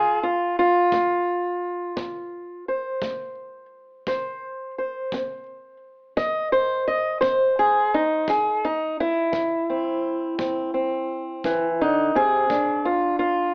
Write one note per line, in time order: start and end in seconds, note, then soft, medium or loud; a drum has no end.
0.00 0.50 F2 medium
0.00 0.22 F4 medium
0.00 0.23 G#4 medium
0.23 0.58 F4 medium
0.59 2.68 F4 medium
0.92 1.56 A3 medium
0.92 kick medium
1.97 2.60 F2 medium
1.97 kick medium
2.69 4.07 C5 soft
3.02 3.65 A3 medium
3.02 kick medium
4.07 4.70 C3 medium
4.07 4.78 C5 soft
4.07 kick medium
4.78 6.17 C5 soft
5.12 5.76 C4 medium
5.12 kick medium
6.17 6.81 C3 medium
6.17 6.52 D#5 loud
6.17 kick medium
6.52 6.87 C5 medium
6.88 7.20 D#5 medium
7.21 7.86 C4 medium
7.21 8.27 C5 medium
7.21 kick medium
7.59 7.94 G#4 medium
7.94 8.29 D#4 medium
8.27 8.91 C3 medium
8.27 8.64 G#4 medium
8.27 kick medium
8.65 8.99 D#4 medium
9.00 11.81 E4 medium
9.32 9.96 E3 medium
9.32 kick medium
9.70 10.37 C4 soft
10.39 11.02 C3 medium
10.39 10.73 C4 soft
10.39 kick medium
10.74 12.15 C4 soft
11.44 11.80 E3 medium
11.44 kick medium
11.81 12.15 D3 medium
11.81 12.16 D#4 medium
12.15 12.49 C3 medium
12.15 12.86 G#4 loud
12.50 13.13 A#2 medium
12.50 13.54 D4 soft
12.50 kick medium
12.85 13.18 F4 medium
13.19 13.54 F4 medium